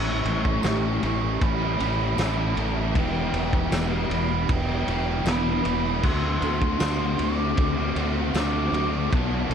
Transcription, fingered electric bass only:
0.00 0.22 A1 loud
0.25 0.60 A1 medium
0.64 0.99 A1 medium
1.03 1.38 A1 loud
1.41 1.76 A1 medium
1.80 2.15 A1 medium
2.18 2.53 A1 medium
2.56 2.95 A1 medium
2.95 3.30 E1 loud
3.33 3.69 E1 medium
3.71 4.07 E1 medium
4.09 4.45 E1 loud
4.50 4.85 E1 medium
4.87 5.23 E1 medium
5.25 5.61 E1 medium
5.65 6.00 E1 medium
6.04 6.39 D2 loud
6.42 6.77 D2 loud
6.81 7.16 D2 medium
7.19 7.54 D2 medium
7.58 7.93 D2 medium
7.96 8.31 D2 medium
8.34 8.69 D2 medium
8.72 9.07 D2 medium
9.13 9.47 B1 loud
9.50 9.54 B1 medium

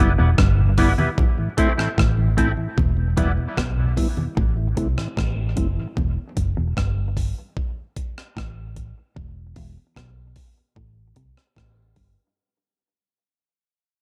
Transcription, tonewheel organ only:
0.19 0.29 E2 medium
0.19 0.29 B2 medium
0.58 0.69 E2 medium
0.58 0.69 B2 medium
0.78 0.89 G3 medium
0.78 0.89 B3 medium
0.78 0.89 E4 medium
0.98 1.09 E2 medium
0.98 1.09 B2 medium
1.38 1.49 A2 medium
1.38 1.49 E3 medium
1.58 1.69 A3 medium
1.58 1.69 C4 medium
1.58 1.69 E4 medium
1.78 1.89 A2 medium
1.78 1.89 E3 medium
2.18 2.28 A2 medium
2.18 2.28 E3 medium
2.37 2.48 A3 medium
2.37 2.48 C4 medium
2.37 2.49 E4 medium
2.57 2.68 A2 medium
2.57 2.68 E3 medium
2.97 3.08 E2 medium
2.97 3.08 B2 medium
3.17 3.28 G3 medium
3.17 3.28 B3 medium
3.17 3.28 E4 medium
3.37 3.48 E2 medium
3.37 3.48 B2 medium
3.77 3.88 E2 medium
3.77 3.88 B2 medium
3.96 4.08 G3 medium
3.96 4.08 B3 medium
3.96 4.08 E4 medium
4.17 4.28 E2 medium
4.17 4.28 B2 medium
4.57 4.68 A2 medium
4.57 4.68 E3 medium
4.77 4.88 A3 medium
4.77 4.88 C4 medium
4.77 4.88 E4 medium
4.98 5.08 A2 medium
4.98 5.08 E3 medium
5.37 5.48 A2 medium
5.37 5.48 E3 medium
5.56 5.67 A3 medium
5.56 5.67 C4 medium
5.56 5.68 E4 medium
5.76 5.88 A2 medium
5.76 5.87 E3 medium

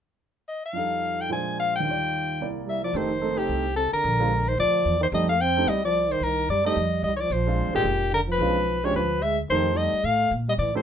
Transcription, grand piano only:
0.73 1.29 F2 soft
0.73 1.29 F3 soft
0.73 1.30 G3 soft
0.73 1.30 D#4 soft
0.78 1.31 A4 soft
1.29 1.84 A#2 soft
1.29 1.85 F3 soft
1.29 1.85 G#3 soft
1.29 1.85 D4 soft
1.29 1.85 C5 medium
1.80 2.37 D#2 soft
1.80 2.38 D#3 soft
1.85 2.40 G3 soft
1.85 2.41 F4 soft
1.91 2.41 D5 medium
2.40 2.95 C2 soft
2.40 2.95 C3 soft
2.40 2.95 A#3 soft
2.40 2.95 E4 soft
2.40 2.95 D5 medium
2.95 3.09 A3 medium
2.95 3.09 C4 medium
2.95 3.09 D#4 medium
2.95 3.09 G4 medium
3.21 3.62 A3 medium
3.21 3.62 C4 medium
3.21 3.62 D#4 medium
3.21 3.62 A4 medium
4.20 4.30 G#3 medium
4.20 4.30 C4 medium
4.20 4.30 D4 medium
4.20 4.30 F4 medium
5.13 5.27 A3 medium
5.13 5.27 C4 soft
5.13 5.28 D#4 soft
5.13 5.28 G4 medium
5.57 5.66 A3 medium
5.57 5.67 C4 medium
5.57 5.67 D#4 medium
5.57 5.67 G4 medium
6.65 6.75 A3 medium
6.65 6.75 C4 medium
6.65 6.75 D#4 medium
6.65 6.76 G4 medium
7.47 7.73 G#3 medium
7.47 7.73 C4 medium
7.47 7.73 D4 medium
7.47 7.73 F4 medium
7.74 7.84 G#3 medium
7.74 7.84 C4 medium
7.74 7.84 D4 medium
7.74 7.84 G#4 medium
8.41 8.55 G#3 medium
8.41 8.55 C#4 medium
8.41 8.55 D4 medium
8.41 8.55 F4 medium
8.84 8.93 G#3 medium
8.84 8.94 C#4 medium
8.84 8.94 D4 medium
8.84 8.94 G4 medium
9.51 9.90 A3 medium
9.51 9.90 C4 soft
9.51 9.90 D#4 soft
9.51 9.91 G4 medium
10.75 10.82 A3 medium
10.75 10.82 C4 medium
10.75 10.82 E4 medium
10.75 10.82 G4 medium

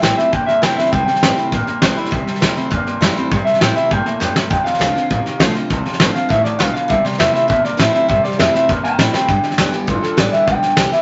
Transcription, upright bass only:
0.02 0.17 A1 medium
0.33 0.47 G1 medium
0.62 0.76 F1 loud
0.78 muted upright bass stroke soft
0.93 1.07 E1 medium
1.22 1.36 G1 loud
1.52 1.67 A1 medium
1.83 1.97 B1 medium
1.97 muted upright bass stroke medium
2.12 2.26 C2 medium
2.28 muted upright bass stroke medium
2.42 2.56 D2 medium
2.57 muted upright bass stroke medium
2.72 2.85 E2 medium
2.86 muted upright bass stroke medium
3.00 3.15 F2 loud
3.31 3.46 G2 medium
3.61 3.76 A2 medium
3.91 4.05 G2 medium
4.06 muted upright bass stroke medium
4.21 4.34 E2 medium
4.51 4.65 F2 medium
4.65 muted upright bass stroke medium
4.80 4.94 C2 medium
4.94 muted upright bass stroke medium
5.11 5.25 A1 medium
5.25 muted upright bass stroke medium
5.40 5.55 B1 medium
5.56 muted upright bass stroke medium
5.70 5.85 C2 loud
5.86 muted upright bass stroke medium
6.00 6.14 G1 loud
6.30 6.45 A1 medium
6.60 6.74 B1 loud
6.75 muted upright bass stroke medium
6.90 7.03 C2 medium
7.04 muted upright bass stroke medium
7.19 7.34 E2 loud
7.49 7.64 B2 medium
7.65 muted upright bass stroke medium
7.79 7.92 A2 loud
8.09 8.24 G2 medium
8.40 8.54 F2 loud
8.69 8.83 E2 medium
8.84 muted upright bass stroke medium
8.98 9.13 A2 loud
9.29 9.43 G2 medium
9.43 muted upright bass stroke medium
9.59 9.73 D2 loud
9.73 muted upright bass stroke medium
9.88 10.02 G1 medium
10.04 muted upright bass stroke medium
10.18 10.33 A1 loud
10.48 10.61 B1 medium
10.62 muted upright bass stroke medium
10.77 10.91 C2 medium
10.91 muted upright bass stroke medium

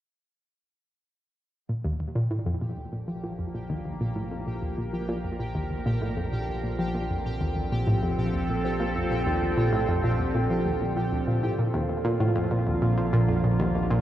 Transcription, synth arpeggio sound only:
1.69 1.73 A#2 medium
1.84 1.92 D#2 medium
2.00 2.04 D#2 medium
2.15 2.27 A#2 medium
2.30 2.42 A2 medium
2.46 2.54 F2 medium
2.61 2.69 A#2 medium
2.77 2.82 D#2 medium
2.92 3.00 A#2 medium
3.08 3.16 F3 medium
3.23 3.28 A#2 medium
3.39 3.47 F2 medium
3.54 3.59 A#2 medium
3.70 3.77 D#2 loud
3.85 3.90 D#2 medium
4.01 4.12 A#2 medium
4.16 4.28 A2 medium
4.31 4.39 F2 medium
4.47 4.55 A#2 medium
4.62 4.67 D#2 medium
4.78 4.86 A#2 medium
4.93 5.01 F3 medium
5.09 5.14 A#2 loud
5.24 5.32 F2 medium
5.40 5.44 A#2 medium
5.55 5.63 D#2 medium
5.71 5.75 D#2 medium
5.86 5.98 A#2 medium
6.02 6.13 A2 medium
6.17 6.25 F2 medium
6.33 6.40 A#2 medium
6.48 6.53 D#2 medium
6.63 6.71 A#2 medium
6.79 6.87 F3 medium
6.94 6.99 A#2 medium
7.10 7.18 F2 medium
7.25 7.30 A#2 medium
7.41 7.49 D#2 medium
7.56 7.61 D#2 medium
7.72 7.83 A#2 medium
7.87 7.99 A2 medium
8.03 8.11 F2 medium
8.18 8.26 A#2 medium
8.34 8.38 D#2 medium
8.49 8.57 A#2 medium
8.65 8.72 F3 medium
8.80 8.85 A#2 medium
8.96 9.03 F2 medium
9.11 9.16 A#2 medium
9.26 9.34 D#2 loud
9.42 9.47 D#2 medium
9.57 9.69 A#2 medium
9.73 9.85 A2 medium
9.88 9.96 F2 medium
10.04 10.12 A#2 medium
10.19 10.24 D#2 medium
10.35 10.43 A#2 medium
10.50 10.58 F3 medium
10.66 10.73 D#2 medium
10.81 10.93 A#2 medium
10.97 11.08 A#2 medium
11.12 11.20 D2 medium
11.27 11.39 A#2 medium
11.43 11.51 A2 medium
11.58 11.63 A#2 medium
11.74 11.82 D#2 loud
11.89 11.94 D#2 medium
12.05 12.16 A#2 loud
12.20 12.32 A2 medium
12.36 12.43 F2 medium
12.51 12.59 A#2 medium
12.67 12.71 D#2 medium
12.82 12.90 A#2 medium
12.97 13.05 F3 medium
13.13 13.18 A#2 loud
13.28 13.36 F2 medium
13.44 13.49 A#2 medium
13.59 13.67 D#2 loud
13.75 13.79 D#2 medium
13.90 14.01 A#2 medium

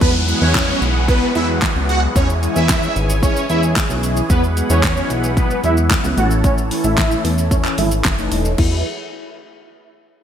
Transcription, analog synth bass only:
0.01 0.34 E2 loud
0.41 0.74 E2 loud
0.82 1.25 B1 medium
1.35 1.68 E2 medium
1.75 2.08 C#2 loud
2.16 2.48 E2 loud
2.56 2.88 E2 loud
2.96 3.39 G#1 medium
3.50 3.82 E2 medium
3.90 4.22 B1 loud
4.30 4.62 E2 loud
4.70 5.02 E2 loud
5.10 5.54 B1 medium
5.64 5.96 E2 medium
6.04 6.15 C#2 loud
6.17 6.71 A1 loud
6.84 7.17 A1 loud
7.25 7.68 E2 medium
7.78 8.02 G#1 medium
8.05 8.29 F#1 medium
8.32 8.56 E1 medium
8.58 8.83 E2 medium

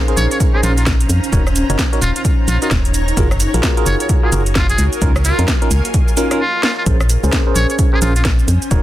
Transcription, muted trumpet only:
0.17 0.26 C#5 medium
0.31 0.37 C#5 medium
0.54 0.61 G#4 medium
0.63 0.72 F4 medium
0.77 0.83 F4 medium
2.02 2.11 F4 medium
2.16 2.22 F4 medium
2.48 2.57 F4 medium
2.62 2.68 F4 medium
3.86 3.95 C#5 medium
4.01 4.06 C#5 medium
4.24 4.31 G#4 medium
4.56 4.67 F4 medium
4.70 4.84 G#4 medium
5.25 5.42 F4 medium
6.40 6.62 F4 medium
6.63 6.72 F4 medium
6.77 6.83 F4 medium
7.56 7.65 C#5 medium
7.70 7.76 C#5 medium
7.93 8.00 G#4 medium
8.02 8.11 F4 medium
8.16 8.22 F4 medium

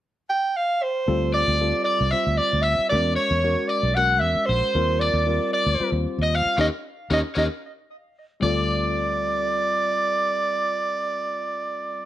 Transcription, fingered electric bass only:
1.08 1.44 D2 medium
1.48 1.72 D2 medium
2.01 2.12 C2 medium
2.14 muted fingered electric bass stroke soft
2.27 2.38 D2 medium
2.53 2.77 D2 medium
2.79 muted fingered electric bass stroke soft
2.92 3.16 E2 medium
3.31 3.55 E2 medium
3.83 4.23 B1 medium
4.23 4.35 E2 medium
4.36 muted fingered electric bass stroke soft
4.49 4.61 A#1 medium
4.75 5.11 D#2 medium
5.14 5.38 D#2 medium
5.66 5.79 D2 medium
5.80 muted fingered electric bass stroke soft
5.92 6.05 D#2 medium
6.19 6.43 D#2 medium
6.45 muted fingered electric bass stroke soft
6.58 6.68 D#2 medium
7.11 7.21 D#2 medium
7.37 7.47 D#2 medium
8.42 12.05 D2 medium

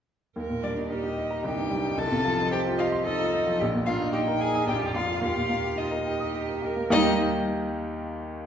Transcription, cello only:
0.36 0.87 A#4 medium
0.91 1.43 G4 medium
1.44 1.97 D#4 medium
1.98 2.53 F4 medium
2.52 3.07 G4 medium
3.05 3.59 A4 medium
3.60 3.68 G4 medium
3.87 4.16 D4 medium
4.15 4.68 D#4 medium
4.68 5.25 F4 medium
5.23 5.73 G4 medium
5.79 5.87 F4 medium
6.07 6.66 G4 medium
6.64 6.92 A#4 medium
6.92 7.23 G3 medium

